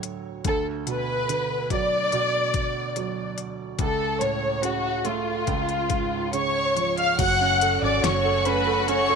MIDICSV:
0, 0, Header, 1, 6, 480
1, 0, Start_track
1, 0, Key_signature, 3, "minor"
1, 0, Tempo, 835655
1, 260, Time_signature, 4, 2, 24, 8
1, 2659, Tempo, 849858
1, 5215, End_track
2, 0, Start_track
2, 0, Title_t, "Violin section"
2, 0, Program_c, 0, 48
2, 270, Note_on_c, 0, 69, 75
2, 376, Note_off_c, 0, 69, 0
2, 513, Note_on_c, 0, 71, 78
2, 964, Note_off_c, 0, 71, 0
2, 986, Note_on_c, 0, 74, 95
2, 1918, Note_off_c, 0, 74, 0
2, 2184, Note_on_c, 0, 69, 85
2, 2403, Note_off_c, 0, 69, 0
2, 2419, Note_on_c, 0, 73, 74
2, 2658, Note_on_c, 0, 66, 74
2, 2659, Note_off_c, 0, 73, 0
2, 2890, Note_on_c, 0, 65, 64
2, 2896, Note_off_c, 0, 66, 0
2, 3617, Note_off_c, 0, 65, 0
2, 3625, Note_on_c, 0, 73, 73
2, 3632, Note_on_c, 0, 85, 61
2, 3964, Note_off_c, 0, 73, 0
2, 3967, Note_off_c, 0, 85, 0
2, 3990, Note_on_c, 0, 77, 77
2, 3994, Note_on_c, 0, 89, 54
2, 4107, Note_off_c, 0, 77, 0
2, 4108, Note_on_c, 0, 78, 93
2, 4109, Note_off_c, 0, 89, 0
2, 4114, Note_on_c, 0, 90, 74
2, 4442, Note_off_c, 0, 78, 0
2, 4445, Note_off_c, 0, 90, 0
2, 4467, Note_on_c, 0, 74, 85
2, 4472, Note_on_c, 0, 86, 68
2, 4584, Note_off_c, 0, 74, 0
2, 4587, Note_off_c, 0, 86, 0
2, 4588, Note_on_c, 0, 73, 82
2, 4593, Note_on_c, 0, 85, 68
2, 4824, Note_off_c, 0, 73, 0
2, 4827, Note_off_c, 0, 85, 0
2, 4829, Note_on_c, 0, 71, 82
2, 4835, Note_on_c, 0, 83, 60
2, 5064, Note_off_c, 0, 71, 0
2, 5067, Note_off_c, 0, 83, 0
2, 5067, Note_on_c, 0, 73, 92
2, 5072, Note_on_c, 0, 85, 80
2, 5215, Note_off_c, 0, 73, 0
2, 5215, Note_off_c, 0, 85, 0
2, 5215, End_track
3, 0, Start_track
3, 0, Title_t, "String section"
3, 0, Program_c, 1, 48
3, 4106, Note_on_c, 1, 49, 70
3, 4107, Note_on_c, 1, 66, 81
3, 5215, Note_off_c, 1, 49, 0
3, 5215, Note_off_c, 1, 66, 0
3, 5215, End_track
4, 0, Start_track
4, 0, Title_t, "Grand piano"
4, 0, Program_c, 2, 0
4, 0, Control_c, 2, 64, 127
4, 0, Note_on_c, 2, 38, 55
4, 0, Note_on_c, 2, 45, 47
4, 0, Note_on_c, 2, 54, 51
4, 236, Note_off_c, 2, 45, 0
4, 237, Note_off_c, 2, 38, 0
4, 245, Note_off_c, 2, 54, 0
4, 258, Note_on_c, 2, 38, 56
4, 269, Control_c, 2, 64, 0
4, 381, Control_c, 2, 64, 127
4, 498, Note_on_c, 2, 47, 43
4, 741, Note_on_c, 2, 50, 41
4, 982, Note_on_c, 2, 54, 50
4, 1214, Note_off_c, 2, 47, 0
4, 1222, Note_on_c, 2, 47, 53
4, 1677, Note_off_c, 2, 50, 0
4, 1694, Note_off_c, 2, 54, 0
4, 1703, Note_on_c, 2, 54, 46
4, 2153, Note_off_c, 2, 38, 0
4, 2155, Note_off_c, 2, 47, 0
4, 2164, Note_off_c, 2, 54, 0
4, 2180, Note_on_c, 2, 37, 51
4, 2184, Control_c, 2, 64, 0
4, 2283, Control_c, 2, 64, 127
4, 2416, Note_on_c, 2, 45, 41
4, 2657, Note_on_c, 2, 49, 38
4, 2895, Note_on_c, 2, 57, 47
4, 3113, Note_off_c, 2, 45, 0
4, 3114, Note_off_c, 2, 37, 0
4, 3120, Note_off_c, 2, 49, 0
4, 3128, Note_off_c, 2, 57, 0
4, 3135, Note_on_c, 2, 37, 56
4, 3141, Control_c, 2, 64, 0
4, 3226, Control_c, 2, 64, 127
4, 3376, Note_on_c, 2, 44, 38
4, 3622, Note_on_c, 2, 49, 39
4, 3862, Note_on_c, 2, 53, 45
4, 4082, Note_off_c, 2, 37, 0
4, 4082, Note_off_c, 2, 44, 0
4, 4091, Note_off_c, 2, 49, 0
4, 4096, Note_off_c, 2, 53, 0
4, 4102, Note_on_c, 2, 54, 63
4, 4111, Control_c, 2, 64, 0
4, 4210, Control_c, 2, 64, 127
4, 4228, Note_on_c, 2, 61, 49
4, 4348, Note_on_c, 2, 69, 48
4, 4458, Note_off_c, 2, 61, 0
4, 4467, Note_on_c, 2, 61, 48
4, 4575, Note_off_c, 2, 54, 0
4, 4583, Note_on_c, 2, 54, 47
4, 4695, Note_off_c, 2, 69, 0
4, 4703, Note_on_c, 2, 69, 46
4, 4815, Note_off_c, 2, 61, 0
4, 4824, Note_on_c, 2, 61, 53
4, 4932, Note_off_c, 2, 69, 0
4, 4941, Note_on_c, 2, 69, 52
4, 5054, Note_off_c, 2, 61, 0
4, 5063, Note_on_c, 2, 61, 71
4, 5173, Note_off_c, 2, 69, 0
4, 5181, Note_on_c, 2, 69, 56
4, 5215, Note_off_c, 2, 54, 0
4, 5215, Note_off_c, 2, 61, 0
4, 5215, Note_off_c, 2, 69, 0
4, 5215, End_track
5, 0, Start_track
5, 0, Title_t, "Fingered electric bass"
5, 0, Program_c, 3, 33
5, 4105, Note_on_c, 3, 30, 94
5, 4440, Note_off_c, 3, 30, 0
5, 4463, Note_on_c, 3, 32, 74
5, 4574, Note_off_c, 3, 32, 0
5, 4582, Note_on_c, 3, 30, 92
5, 5215, Note_off_c, 3, 30, 0
5, 5215, End_track
6, 0, Start_track
6, 0, Title_t, "Drums"
6, 18, Note_on_c, 9, 42, 57
6, 75, Note_off_c, 9, 42, 0
6, 256, Note_on_c, 9, 42, 66
6, 257, Note_on_c, 9, 36, 90
6, 313, Note_off_c, 9, 42, 0
6, 315, Note_off_c, 9, 36, 0
6, 499, Note_on_c, 9, 42, 66
6, 556, Note_off_c, 9, 42, 0
6, 742, Note_on_c, 9, 42, 66
6, 800, Note_off_c, 9, 42, 0
6, 978, Note_on_c, 9, 36, 67
6, 979, Note_on_c, 9, 42, 50
6, 1036, Note_off_c, 9, 36, 0
6, 1036, Note_off_c, 9, 42, 0
6, 1219, Note_on_c, 9, 42, 48
6, 1277, Note_off_c, 9, 42, 0
6, 1458, Note_on_c, 9, 42, 63
6, 1460, Note_on_c, 9, 36, 85
6, 1515, Note_off_c, 9, 42, 0
6, 1517, Note_off_c, 9, 36, 0
6, 1700, Note_on_c, 9, 42, 61
6, 1758, Note_off_c, 9, 42, 0
6, 1940, Note_on_c, 9, 42, 55
6, 1997, Note_off_c, 9, 42, 0
6, 2175, Note_on_c, 9, 42, 64
6, 2176, Note_on_c, 9, 36, 89
6, 2232, Note_off_c, 9, 42, 0
6, 2234, Note_off_c, 9, 36, 0
6, 2418, Note_on_c, 9, 42, 62
6, 2476, Note_off_c, 9, 42, 0
6, 2660, Note_on_c, 9, 42, 68
6, 2717, Note_off_c, 9, 42, 0
6, 2895, Note_on_c, 9, 42, 46
6, 2951, Note_off_c, 9, 42, 0
6, 3135, Note_on_c, 9, 42, 49
6, 3137, Note_on_c, 9, 36, 68
6, 3191, Note_off_c, 9, 42, 0
6, 3193, Note_off_c, 9, 36, 0
6, 3256, Note_on_c, 9, 42, 31
6, 3313, Note_off_c, 9, 42, 0
6, 3374, Note_on_c, 9, 42, 60
6, 3376, Note_on_c, 9, 36, 78
6, 3431, Note_off_c, 9, 42, 0
6, 3433, Note_off_c, 9, 36, 0
6, 3620, Note_on_c, 9, 42, 63
6, 3677, Note_off_c, 9, 42, 0
6, 3866, Note_on_c, 9, 42, 51
6, 3922, Note_off_c, 9, 42, 0
6, 3984, Note_on_c, 9, 42, 37
6, 4040, Note_off_c, 9, 42, 0
6, 4104, Note_on_c, 9, 42, 83
6, 4105, Note_on_c, 9, 36, 109
6, 4105, Note_on_c, 9, 49, 88
6, 4161, Note_off_c, 9, 36, 0
6, 4161, Note_off_c, 9, 42, 0
6, 4161, Note_off_c, 9, 49, 0
6, 4345, Note_on_c, 9, 42, 75
6, 4401, Note_off_c, 9, 42, 0
6, 4584, Note_on_c, 9, 38, 100
6, 4586, Note_on_c, 9, 42, 86
6, 4641, Note_off_c, 9, 38, 0
6, 4642, Note_off_c, 9, 42, 0
6, 4819, Note_on_c, 9, 42, 62
6, 4876, Note_off_c, 9, 42, 0
6, 5061, Note_on_c, 9, 42, 55
6, 5117, Note_off_c, 9, 42, 0
6, 5215, End_track
0, 0, End_of_file